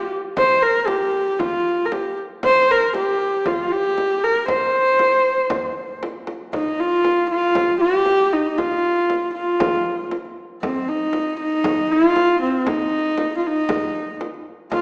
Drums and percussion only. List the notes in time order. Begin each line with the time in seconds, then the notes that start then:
0.37 frame drum
0.63 frame drum
0.88 frame drum
1.14 frame drum
1.40 frame drum
1.79 frame drum
1.92 frame drum
2.43 frame drum
2.69 frame drum
2.94 frame drum
3.20 frame drum
3.46 frame drum
3.84 frame drum
3.98 frame drum
4.48 frame drum
4.74 frame drum
4.99 frame drum
5.24 frame drum
5.50 frame drum
5.89 frame drum
6.03 frame drum
6.27 frame drum
6.53 frame drum
6.92 frame drum
7.05 frame drum
7.31 frame drum
7.55 frame drum
8.06 frame drum
8.20 frame drum
8.58 frame drum
8.97 frame drum
9.10 frame drum
9.35 frame drum
9.60 frame drum
10.11 frame drum
10.25 frame drum
10.63 frame drum
11.01 frame drum
11.13 frame drum
11.39 frame drum
11.64 frame drum
12.16 frame drum
12.28 frame drum
12.67 frame drum
13.05 frame drum
13.18 frame drum
13.43 frame drum
13.69 frame drum
14.21 frame drum
14.34 frame drum
14.72 frame drum